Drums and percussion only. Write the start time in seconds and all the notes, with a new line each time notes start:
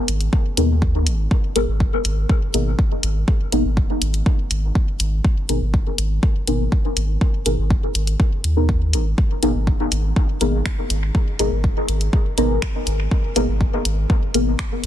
0.08 closed hi-hat
0.21 closed hi-hat
0.33 kick
0.57 closed hi-hat
0.82 kick
1.07 closed hi-hat
1.31 kick
1.56 closed hi-hat
1.80 kick
2.05 closed hi-hat
2.29 kick
2.54 closed hi-hat
2.79 kick
3.03 closed hi-hat
3.28 kick
3.52 closed hi-hat
3.77 kick
4.02 closed hi-hat
4.14 closed hi-hat
4.26 kick
4.51 closed hi-hat
4.75 kick
5.00 closed hi-hat
5.25 kick
5.49 closed hi-hat
5.74 kick
5.98 closed hi-hat
6.23 kick
6.47 closed hi-hat
6.72 kick
6.97 closed hi-hat
7.21 kick
7.46 closed hi-hat
7.70 kick
7.95 closed hi-hat
8.07 closed hi-hat
8.20 kick
8.44 closed hi-hat
8.69 kick
8.93 closed hi-hat
9.18 kick
9.43 closed hi-hat
9.67 kick
9.92 closed hi-hat
10.16 kick
10.41 closed hi-hat
10.66 finger snap, kick
10.90 closed hi-hat
11.15 kick
11.39 closed hi-hat
11.64 kick
11.88 closed hi-hat
12.01 closed hi-hat
12.13 kick
12.38 closed hi-hat
12.62 finger snap, kick
12.87 closed hi-hat
13.11 kick
13.36 closed hi-hat
13.61 kick
13.85 closed hi-hat
14.10 kick
14.34 closed hi-hat
14.59 finger snap, kick